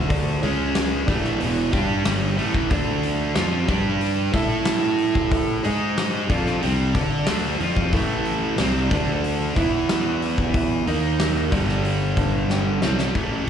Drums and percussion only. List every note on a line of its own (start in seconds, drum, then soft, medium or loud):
0.10 kick loud
0.10 open hi-hat medium
0.43 open hi-hat medium
0.75 snare loud
0.75 open hi-hat medium
1.08 kick loud
1.08 open hi-hat medium
1.25 snare soft
1.41 open hi-hat medium
1.73 kick medium
1.73 open hi-hat medium
2.06 snare loud
2.06 open hi-hat medium
2.39 open hi-hat medium
2.54 kick medium
2.70 kick loud
2.70 open hi-hat medium
3.03 open hi-hat medium
3.36 snare loud
3.36 open hi-hat medium
3.68 kick loud
3.68 open hi-hat medium
4.01 open hi-hat medium
4.33 kick medium
4.33 open hi-hat medium
4.66 snare loud
4.66 open hi-hat medium
4.98 open hi-hat medium
5.15 kick medium
5.31 kick loud
5.31 open hi-hat medium
5.64 open hi-hat medium
5.98 snare loud
5.98 open hi-hat medium
6.30 kick loud
6.30 open hi-hat medium
6.46 snare soft
6.63 open hi-hat medium
6.95 kick medium
6.95 open hi-hat medium
7.27 snare loud
7.27 open hi-hat medium
7.60 open hi-hat medium
7.77 kick medium
7.93 kick loud
7.93 open hi-hat medium
8.25 open hi-hat soft
8.58 snare loud
8.58 open hi-hat medium
8.91 kick loud
8.91 open hi-hat medium
9.24 open hi-hat medium
9.56 kick medium
9.56 open hi-hat medium
9.89 snare loud
9.89 open hi-hat medium
10.22 open hi-hat medium
10.38 kick medium
10.54 kick loud
10.54 open hi-hat medium
10.87 open hi-hat medium
11.20 snare loud
11.20 open hi-hat medium
11.52 kick loud
11.52 open hi-hat medium
11.69 snare soft
11.85 open hi-hat medium
12.17 kick medium
12.17 open hi-hat medium
12.50 snare medium
12.82 snare medium
12.99 snare medium
13.15 kick medium
13.15 open hi-hat soft